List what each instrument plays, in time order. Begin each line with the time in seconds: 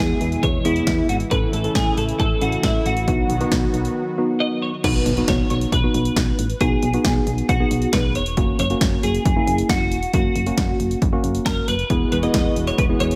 Already playing: analog synth pad B2 E3 G#3 E4, tine electric piano B3 E4 G#4
0.00 fm bass E2, clean electric guitar G#4
0.21 fm bass E2, closed hi-hat
0.32 closed hi-hat
0.43 fm bass E2, clean electric guitar C#5, kick, closed hi-hat
0.65 fm bass E2, tine electric piano B3 E4 G#4, clean electric guitar E4, closed hi-hat
0.76 closed hi-hat
0.87 fm bass E2, kick, snare, closed hi-hat
1.09 fm bass G#1, clean electric guitar F#4, closed hi-hat
1.20 closed hi-hat
1.31 fm bass A1, analog synth pad C#3 A3, tine electric piano C#4 E4 A4, clean electric guitar B4, kick, closed hi-hat
1.53 fm bass A1, clean electric guitar A4, closed hi-hat
1.64 tine electric piano C#4 E4 A4, closed hi-hat
1.75 fm bass A1, clean electric guitar G#4, kick, snare, closed hi-hat
1.97 fm bass A1, clean electric guitar A4, closed hi-hat
2.09 closed hi-hat
2.19 fm bass A1, clean electric guitar A4, kick, closed hi-hat
2.41 fm bass A1, tine electric piano C#4 E4 A4, clean electric guitar F#4, closed hi-hat
2.52 closed hi-hat
2.63 fm bass A1, clean electric guitar E4, kick, snare, closed hi-hat
2.86 fm bass A1, clean electric guitar F#4, closed hi-hat
2.97 closed hi-hat
3.08 fm bass B1, analog synth pad D#3 F#3 B3 F#4, tine electric piano B3 D#4 F#4, kick, closed hi-hat
3.30 fm bass B1, closed hi-hat
3.41 tine electric piano B3 D#4 F#4, closed hi-hat
3.52 fm bass B1, kick, snare, closed hi-hat
3.74 fm bass B1, closed hi-hat
3.85 closed hi-hat
4.18 tine electric piano B3 D#4 F#4
4.40 clean electric guitar D#5
4.62 clean electric guitar C#5
4.84 fm bass B1, tine electric piano B3 D#4 F#4, clean electric guitar B4, kick, closed hi-hat, crash, impact
5.06 fm bass B1, closed hi-hat
5.17 tine electric piano B3 D#4 F#4, closed hi-hat
5.28 fm bass B1, clean electric guitar C#5, kick, snare, closed hi-hat
5.50 fm bass B1, clean electric guitar C#5, closed hi-hat
5.61 closed hi-hat
5.72 fm bass B1, clean electric guitar B4, kick, closed hi-hat
5.84 tine electric piano B3 D#4 F#4
5.94 fm bass B1, closed hi-hat
6.05 closed hi-hat
6.16 fm bass B1, kick, snare, closed hi-hat
6.39 fm bass A1, closed hi-hat
6.50 closed hi-hat
6.61 fm bass B1, tine electric piano B3 D#4 F#4, clean electric guitar G#4, kick, closed hi-hat
6.83 fm bass B1, closed hi-hat
6.94 tine electric piano B3 D#4 F#4, closed hi-hat
7.05 fm bass B1, kick, snare, closed hi-hat
7.27 fm bass B1, closed hi-hat
7.38 closed hi-hat
7.49 fm bass B1, clean electric guitar F#4, kick, closed hi-hat
7.60 tine electric piano B3 D#4 G#4
7.71 fm bass B1, closed hi-hat
7.82 closed hi-hat
7.93 fm bass B1, clean electric guitar B4, kick, snare, closed hi-hat
8.15 fm bass E1, clean electric guitar C#5, closed hi-hat
8.26 closed hi-hat
8.37 fm bass F#1, tine electric piano A#3 C#4 F#4, kick, closed hi-hat
8.59 fm bass F#1, clean electric guitar C#5, closed hi-hat
8.70 tine electric piano A#3 C#4 F#4, closed hi-hat
8.81 fm bass F#1, kick, snare, closed hi-hat
9.03 fm bass F#1, clean electric guitar G#4, closed hi-hat
9.15 closed hi-hat
9.25 fm bass F#1, kick, closed hi-hat
9.36 tine electric piano A#3 C#4 E4
9.47 fm bass F#1, closed hi-hat
9.58 closed hi-hat
9.69 fm bass F#1, clean electric guitar F#4, kick, snare, closed hi-hat
9.92 fm bass E1, closed hi-hat
10.03 closed hi-hat
10.13 fm bass F#1, tine electric piano A#3 C#4 F#4, clean electric guitar F#4, kick, closed hi-hat
10.36 fm bass F#1, closed hi-hat
10.46 tine electric piano A#3 C#4 F#4, closed hi-hat
10.58 fm bass F#1, kick, snare, closed hi-hat
10.80 fm bass F#1, closed hi-hat
10.91 closed hi-hat
11.02 fm bass F#1, kick, closed hi-hat
11.13 tine electric piano A#3 C#4 F#4
11.24 fm bass F#1, closed hi-hat
11.35 closed hi-hat
11.46 fm bass F#1, clean electric guitar A#4, kick, snare, closed hi-hat
11.68 fm bass F#1, clean electric guitar B4, closed hi-hat
11.79 closed hi-hat
11.90 fm bass E1, analog synth pad E3 G#3 B3 F#4, tine electric piano B3 E4 G#4, kick, closed hi-hat
12.12 fm bass E1, clean electric guitar B4, closed hi-hat
12.23 tine electric piano B3 E4 G#4, clean electric guitar D#5, closed hi-hat
12.34 fm bass E1, kick, snare, closed hi-hat
12.56 fm bass E1, closed hi-hat
12.67 clean electric guitar C#5, closed hi-hat
12.78 fm bass E1, clean electric guitar B4, kick, closed hi-hat
12.90 tine electric piano B3 E4 G#4
13.00 fm bass E1, clean electric guitar C#5, closed hi-hat
13.11 closed hi-hat